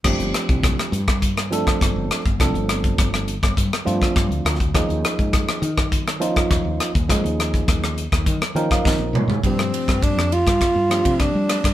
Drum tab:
CC |x---------------|----------------|----------------|----------------|
RD |----------------|----------------|----------------|----------------|
HH |-xxxxxx-xxxxx-xx|xxxxxxxxxxxxxxxx|xxxxxxx-xxxxx-xx|xxxxxxxxxxxx----|
SD |r-r-rr-r-r-rr-r-|r-r-rr-r-r-rr-r-|r-r-rr-r-r-rr-r-|r-r-rr-r-r-ro---|
T2 |----------------|----------------|----------------|--------------o-|
FT |----------------|----------------|----------------|---------------o|
BD |o--oo--oo--oo--o|o--oo--oo--oo--o|o--oo--oo--oo--o|o--oo--oo--oo---|

CC |----------------|
RD |x-xxx-xxx-xxx-xx|
HH |----------------|
SD |-r-r-r-rr-r-r-rr|
T2 |----------------|
FT |----------------|
BD |o--oo--oo--oo--o|